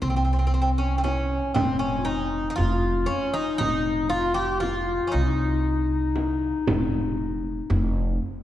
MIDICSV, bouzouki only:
0, 0, Header, 1, 2, 480
1, 0, Start_track
1, 0, Tempo, 1022147
1, 1691, Time_signature, 10, 3, 24, 8
1, 3959, End_track
2, 0, Start_track
2, 0, Title_t, "Bouzouki"
2, 0, Program_c, 0, 25
2, 8, Note_on_c, 0, 60, 64
2, 40, Note_off_c, 0, 60, 0
2, 46, Note_on_c, 0, 60, 43
2, 72, Note_off_c, 0, 60, 0
2, 77, Note_on_c, 0, 60, 47
2, 110, Note_off_c, 0, 60, 0
2, 116, Note_on_c, 0, 60, 34
2, 149, Note_off_c, 0, 60, 0
2, 154, Note_on_c, 0, 60, 44
2, 176, Note_off_c, 0, 60, 0
2, 182, Note_on_c, 0, 60, 38
2, 214, Note_off_c, 0, 60, 0
2, 220, Note_on_c, 0, 60, 52
2, 247, Note_off_c, 0, 60, 0
2, 253, Note_on_c, 0, 60, 47
2, 284, Note_off_c, 0, 60, 0
2, 289, Note_on_c, 0, 60, 56
2, 325, Note_off_c, 0, 60, 0
2, 367, Note_on_c, 0, 61, 62
2, 458, Note_off_c, 0, 61, 0
2, 460, Note_on_c, 0, 60, 49
2, 485, Note_off_c, 0, 60, 0
2, 487, Note_on_c, 0, 61, 66
2, 723, Note_off_c, 0, 61, 0
2, 725, Note_on_c, 0, 60, 72
2, 840, Note_off_c, 0, 60, 0
2, 841, Note_on_c, 0, 61, 62
2, 962, Note_on_c, 0, 63, 74
2, 970, Note_off_c, 0, 61, 0
2, 1168, Note_off_c, 0, 63, 0
2, 1174, Note_on_c, 0, 63, 63
2, 1199, Note_off_c, 0, 63, 0
2, 1201, Note_on_c, 0, 65, 73
2, 1438, Note_on_c, 0, 61, 74
2, 1453, Note_off_c, 0, 65, 0
2, 1566, Note_on_c, 0, 63, 80
2, 1569, Note_off_c, 0, 61, 0
2, 1676, Note_off_c, 0, 63, 0
2, 1682, Note_on_c, 0, 63, 95
2, 1921, Note_off_c, 0, 63, 0
2, 1923, Note_on_c, 0, 65, 83
2, 2038, Note_off_c, 0, 65, 0
2, 2040, Note_on_c, 0, 67, 89
2, 2159, Note_off_c, 0, 67, 0
2, 2161, Note_on_c, 0, 65, 80
2, 2380, Note_off_c, 0, 65, 0
2, 2383, Note_on_c, 0, 61, 57
2, 2403, Note_on_c, 0, 63, 68
2, 2414, Note_off_c, 0, 61, 0
2, 3830, Note_off_c, 0, 63, 0
2, 3959, End_track
0, 0, End_of_file